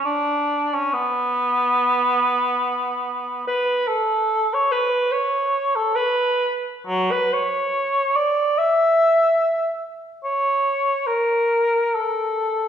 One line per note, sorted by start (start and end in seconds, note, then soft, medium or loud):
0.05 0.75 D4 medium
0.74 0.95 C#4 medium
0.93 3.47 B3 medium
3.47 3.89 B4 medium
3.88 4.55 A4 medium
4.54 4.73 C#5 medium
4.71 5.14 B4 medium
5.12 5.77 C#5 medium
5.75 5.97 A4 medium
5.96 6.55 B4 medium
6.87 7.13 F#3 medium
7.11 7.34 B4 medium
7.33 8.17 C#5 medium
8.16 8.59 D5 loud
8.58 9.83 E5 loud
10.24 11.08 C#5 medium
11.06 11.96 A#4 medium
11.95 12.68 A4 medium